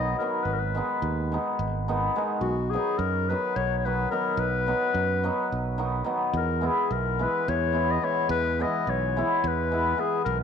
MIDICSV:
0, 0, Header, 1, 4, 480
1, 0, Start_track
1, 0, Tempo, 559180
1, 395, Time_signature, 7, 3, 24, 8
1, 8954, End_track
2, 0, Start_track
2, 0, Title_t, "Clarinet"
2, 0, Program_c, 0, 71
2, 0, Note_on_c, 0, 75, 102
2, 154, Note_off_c, 0, 75, 0
2, 159, Note_on_c, 0, 70, 77
2, 371, Note_on_c, 0, 71, 83
2, 384, Note_off_c, 0, 70, 0
2, 456, Note_on_c, 0, 70, 80
2, 469, Note_off_c, 0, 71, 0
2, 506, Note_on_c, 0, 71, 72
2, 519, Note_off_c, 0, 70, 0
2, 1365, Note_off_c, 0, 71, 0
2, 2069, Note_on_c, 0, 66, 93
2, 2316, Note_on_c, 0, 68, 98
2, 2329, Note_off_c, 0, 66, 0
2, 2559, Note_on_c, 0, 70, 91
2, 2571, Note_off_c, 0, 68, 0
2, 2821, Note_on_c, 0, 71, 91
2, 2834, Note_off_c, 0, 70, 0
2, 3056, Note_on_c, 0, 73, 103
2, 3069, Note_off_c, 0, 71, 0
2, 3241, Note_off_c, 0, 73, 0
2, 3247, Note_on_c, 0, 73, 79
2, 3307, Note_on_c, 0, 71, 94
2, 3320, Note_off_c, 0, 73, 0
2, 3519, Note_off_c, 0, 71, 0
2, 3524, Note_on_c, 0, 70, 102
2, 3774, Note_on_c, 0, 71, 110
2, 3787, Note_off_c, 0, 70, 0
2, 4993, Note_off_c, 0, 71, 0
2, 5467, Note_on_c, 0, 70, 82
2, 5722, Note_on_c, 0, 68, 81
2, 5735, Note_off_c, 0, 70, 0
2, 5944, Note_on_c, 0, 70, 85
2, 5957, Note_off_c, 0, 68, 0
2, 6206, Note_on_c, 0, 71, 92
2, 6219, Note_off_c, 0, 70, 0
2, 6430, Note_on_c, 0, 73, 107
2, 6443, Note_off_c, 0, 71, 0
2, 6794, Note_on_c, 0, 75, 90
2, 6807, Note_off_c, 0, 73, 0
2, 6904, Note_on_c, 0, 73, 98
2, 6916, Note_off_c, 0, 75, 0
2, 7124, Note_off_c, 0, 73, 0
2, 7132, Note_on_c, 0, 71, 107
2, 7399, Note_on_c, 0, 75, 94
2, 7412, Note_off_c, 0, 71, 0
2, 7638, Note_on_c, 0, 73, 86
2, 7651, Note_off_c, 0, 75, 0
2, 8131, Note_on_c, 0, 71, 101
2, 8144, Note_off_c, 0, 73, 0
2, 8584, Note_on_c, 0, 68, 97
2, 8597, Note_off_c, 0, 71, 0
2, 8792, Note_off_c, 0, 68, 0
2, 8797, Note_on_c, 0, 70, 96
2, 8914, Note_off_c, 0, 70, 0
2, 8954, End_track
3, 0, Start_track
3, 0, Title_t, "Hammered dulcimer"
3, 0, Program_c, 1, 15
3, 0, Note_on_c, 1, 51, 52
3, 0, Note_on_c, 1, 54, 50
3, 162, Note_off_c, 1, 51, 0
3, 166, Note_off_c, 1, 54, 0
3, 172, Note_on_c, 1, 51, 54
3, 176, Note_on_c, 1, 54, 49
3, 183, Note_on_c, 1, 59, 58
3, 189, Note_on_c, 1, 63, 61
3, 312, Note_off_c, 1, 59, 0
3, 315, Note_off_c, 1, 63, 0
3, 438, Note_off_c, 1, 51, 0
3, 438, Note_off_c, 1, 54, 0
3, 640, Note_on_c, 1, 51, 70
3, 651, Note_on_c, 1, 56, 61
3, 661, Note_on_c, 1, 59, 62
3, 664, Note_on_c, 1, 63, 69
3, 796, Note_off_c, 1, 59, 0
3, 798, Note_off_c, 1, 63, 0
3, 1120, Note_off_c, 1, 51, 0
3, 1129, Note_off_c, 1, 56, 0
3, 1131, Note_on_c, 1, 51, 60
3, 1140, Note_on_c, 1, 56, 53
3, 1149, Note_on_c, 1, 63, 71
3, 1151, Note_on_c, 1, 59, 49
3, 1285, Note_off_c, 1, 63, 0
3, 1286, Note_off_c, 1, 59, 0
3, 1604, Note_off_c, 1, 51, 0
3, 1609, Note_off_c, 1, 56, 0
3, 1615, Note_on_c, 1, 51, 74
3, 1619, Note_on_c, 1, 56, 57
3, 1622, Note_on_c, 1, 59, 67
3, 1626, Note_on_c, 1, 63, 71
3, 1758, Note_off_c, 1, 59, 0
3, 1760, Note_off_c, 1, 63, 0
3, 1840, Note_off_c, 1, 51, 0
3, 1844, Note_off_c, 1, 56, 0
3, 1850, Note_on_c, 1, 51, 72
3, 1854, Note_on_c, 1, 56, 75
3, 1863, Note_on_c, 1, 59, 55
3, 1872, Note_on_c, 1, 63, 69
3, 1991, Note_off_c, 1, 59, 0
3, 1996, Note_off_c, 1, 63, 0
3, 2117, Note_off_c, 1, 51, 0
3, 2117, Note_off_c, 1, 56, 0
3, 2346, Note_on_c, 1, 51, 64
3, 2350, Note_on_c, 1, 54, 58
3, 2353, Note_on_c, 1, 59, 53
3, 2366, Note_on_c, 1, 63, 77
3, 2482, Note_off_c, 1, 59, 0
3, 2489, Note_off_c, 1, 63, 0
3, 2820, Note_off_c, 1, 51, 0
3, 2826, Note_off_c, 1, 54, 0
3, 2830, Note_on_c, 1, 51, 62
3, 2836, Note_on_c, 1, 54, 62
3, 2837, Note_on_c, 1, 59, 53
3, 2847, Note_on_c, 1, 63, 63
3, 2970, Note_off_c, 1, 59, 0
3, 2975, Note_off_c, 1, 63, 0
3, 3295, Note_off_c, 1, 51, 0
3, 3303, Note_off_c, 1, 54, 0
3, 3306, Note_on_c, 1, 51, 56
3, 3313, Note_on_c, 1, 54, 56
3, 3313, Note_on_c, 1, 59, 53
3, 3321, Note_on_c, 1, 63, 52
3, 3444, Note_off_c, 1, 59, 0
3, 3448, Note_off_c, 1, 63, 0
3, 3516, Note_off_c, 1, 51, 0
3, 3520, Note_off_c, 1, 54, 0
3, 3527, Note_on_c, 1, 51, 52
3, 3530, Note_on_c, 1, 54, 48
3, 3535, Note_on_c, 1, 59, 58
3, 3546, Note_on_c, 1, 63, 68
3, 3668, Note_off_c, 1, 59, 0
3, 3673, Note_off_c, 1, 63, 0
3, 3799, Note_off_c, 1, 51, 0
3, 3799, Note_off_c, 1, 54, 0
3, 4002, Note_on_c, 1, 51, 53
3, 4014, Note_on_c, 1, 54, 63
3, 4014, Note_on_c, 1, 59, 60
3, 4022, Note_on_c, 1, 63, 61
3, 4153, Note_off_c, 1, 59, 0
3, 4157, Note_off_c, 1, 63, 0
3, 4482, Note_off_c, 1, 51, 0
3, 4484, Note_off_c, 1, 54, 0
3, 4492, Note_on_c, 1, 51, 58
3, 4495, Note_on_c, 1, 54, 76
3, 4502, Note_on_c, 1, 59, 67
3, 4508, Note_on_c, 1, 63, 79
3, 4643, Note_off_c, 1, 59, 0
3, 4646, Note_off_c, 1, 63, 0
3, 4950, Note_off_c, 1, 51, 0
3, 4954, Note_off_c, 1, 54, 0
3, 4960, Note_on_c, 1, 51, 69
3, 4964, Note_on_c, 1, 54, 57
3, 4966, Note_on_c, 1, 59, 52
3, 4974, Note_on_c, 1, 63, 73
3, 5111, Note_off_c, 1, 59, 0
3, 5115, Note_off_c, 1, 63, 0
3, 5178, Note_off_c, 1, 51, 0
3, 5188, Note_off_c, 1, 54, 0
3, 5188, Note_on_c, 1, 51, 77
3, 5198, Note_on_c, 1, 54, 55
3, 5202, Note_on_c, 1, 63, 71
3, 5206, Note_on_c, 1, 59, 59
3, 5342, Note_off_c, 1, 63, 0
3, 5344, Note_off_c, 1, 59, 0
3, 5480, Note_off_c, 1, 51, 0
3, 5480, Note_off_c, 1, 54, 0
3, 5672, Note_on_c, 1, 52, 62
3, 5678, Note_on_c, 1, 56, 56
3, 5688, Note_on_c, 1, 59, 58
3, 5691, Note_on_c, 1, 64, 68
3, 5831, Note_off_c, 1, 59, 0
3, 5833, Note_off_c, 1, 64, 0
3, 6164, Note_off_c, 1, 52, 0
3, 6164, Note_off_c, 1, 56, 0
3, 6174, Note_on_c, 1, 52, 59
3, 6174, Note_on_c, 1, 56, 65
3, 6181, Note_on_c, 1, 59, 53
3, 6185, Note_on_c, 1, 64, 70
3, 6323, Note_off_c, 1, 59, 0
3, 6325, Note_off_c, 1, 64, 0
3, 6623, Note_off_c, 1, 52, 0
3, 6627, Note_off_c, 1, 56, 0
3, 6633, Note_on_c, 1, 52, 57
3, 6637, Note_on_c, 1, 56, 48
3, 6649, Note_on_c, 1, 59, 51
3, 6650, Note_on_c, 1, 64, 61
3, 6793, Note_off_c, 1, 59, 0
3, 6794, Note_off_c, 1, 64, 0
3, 6870, Note_off_c, 1, 56, 0
3, 6874, Note_off_c, 1, 52, 0
3, 6880, Note_on_c, 1, 56, 48
3, 6884, Note_on_c, 1, 52, 52
3, 6894, Note_on_c, 1, 59, 57
3, 6896, Note_on_c, 1, 64, 53
3, 7029, Note_off_c, 1, 59, 0
3, 7030, Note_off_c, 1, 64, 0
3, 7366, Note_off_c, 1, 52, 0
3, 7373, Note_off_c, 1, 56, 0
3, 7376, Note_on_c, 1, 52, 69
3, 7383, Note_on_c, 1, 56, 61
3, 7383, Note_on_c, 1, 59, 62
3, 7393, Note_on_c, 1, 64, 74
3, 7519, Note_off_c, 1, 59, 0
3, 7524, Note_off_c, 1, 64, 0
3, 7857, Note_off_c, 1, 52, 0
3, 7863, Note_off_c, 1, 56, 0
3, 7868, Note_on_c, 1, 52, 72
3, 7873, Note_on_c, 1, 56, 63
3, 7875, Note_on_c, 1, 59, 60
3, 7884, Note_on_c, 1, 64, 80
3, 8010, Note_off_c, 1, 59, 0
3, 8015, Note_off_c, 1, 64, 0
3, 8328, Note_off_c, 1, 52, 0
3, 8329, Note_off_c, 1, 56, 0
3, 8338, Note_on_c, 1, 52, 59
3, 8340, Note_on_c, 1, 56, 56
3, 8343, Note_on_c, 1, 59, 60
3, 8356, Note_on_c, 1, 64, 67
3, 8480, Note_off_c, 1, 59, 0
3, 8487, Note_off_c, 1, 64, 0
3, 8546, Note_off_c, 1, 52, 0
3, 8556, Note_on_c, 1, 52, 61
3, 8557, Note_off_c, 1, 56, 0
3, 8567, Note_on_c, 1, 56, 48
3, 8567, Note_on_c, 1, 59, 57
3, 8574, Note_on_c, 1, 64, 57
3, 8705, Note_off_c, 1, 59, 0
3, 8709, Note_off_c, 1, 64, 0
3, 8841, Note_off_c, 1, 52, 0
3, 8841, Note_off_c, 1, 56, 0
3, 8954, End_track
4, 0, Start_track
4, 0, Title_t, "Fingered electric bass"
4, 0, Program_c, 2, 33
4, 0, Note_on_c, 2, 35, 88
4, 115, Note_off_c, 2, 35, 0
4, 388, Note_on_c, 2, 32, 72
4, 684, Note_off_c, 2, 32, 0
4, 877, Note_on_c, 2, 39, 88
4, 1173, Note_off_c, 2, 39, 0
4, 1365, Note_on_c, 2, 32, 89
4, 1788, Note_off_c, 2, 32, 0
4, 2069, Note_on_c, 2, 35, 78
4, 2365, Note_off_c, 2, 35, 0
4, 2564, Note_on_c, 2, 42, 91
4, 2859, Note_off_c, 2, 42, 0
4, 3057, Note_on_c, 2, 35, 86
4, 3476, Note_off_c, 2, 35, 0
4, 3754, Note_on_c, 2, 35, 95
4, 4049, Note_off_c, 2, 35, 0
4, 4243, Note_on_c, 2, 42, 88
4, 4539, Note_off_c, 2, 42, 0
4, 4741, Note_on_c, 2, 35, 77
4, 5160, Note_off_c, 2, 35, 0
4, 5437, Note_on_c, 2, 40, 99
4, 5732, Note_off_c, 2, 40, 0
4, 5928, Note_on_c, 2, 35, 80
4, 6222, Note_off_c, 2, 35, 0
4, 6423, Note_on_c, 2, 40, 106
4, 6841, Note_off_c, 2, 40, 0
4, 7118, Note_on_c, 2, 40, 106
4, 7413, Note_off_c, 2, 40, 0
4, 7614, Note_on_c, 2, 35, 81
4, 7907, Note_off_c, 2, 35, 0
4, 8102, Note_on_c, 2, 40, 97
4, 8520, Note_off_c, 2, 40, 0
4, 8807, Note_on_c, 2, 35, 97
4, 8954, Note_off_c, 2, 35, 0
4, 8954, End_track
0, 0, End_of_file